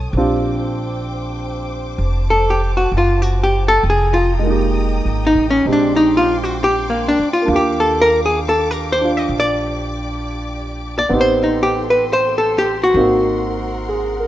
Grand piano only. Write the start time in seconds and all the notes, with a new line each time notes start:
Already playing: A3 C#4 D#4 A4
0.17 C4 D4 F4 G4
4.39 G#3
4.43 A#3 D#4
4.50 G4
5.66 G#3 C4 D4 G4
7.42 A#3 D4
7.49 F4
7.53 G4
9.01 D4 F4
11.09 B3 C4
11.13 D#4 G4
12.95 A#3 C4 D#4 F#4
13.89 G#4
14.19 A#4